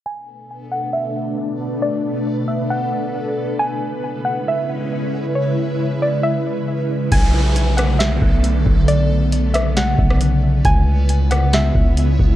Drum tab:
CC |----------------|----------------|----------------|----------------|
HH |----------------|----------------|----------------|----------------|
SD |----------------|----------------|----------------|----------------|
BD |----------------|----------------|----------------|----------------|

CC |x---------------|----------------|----------------|
HH |x---x-x-x---x---|x---x-x-x---x---|x---x-x-x---x---|
SD |------r-o-------|------r-o--r----|------r-o-------|
BD |o---------o---o-|----------o-----|o---------o---o-|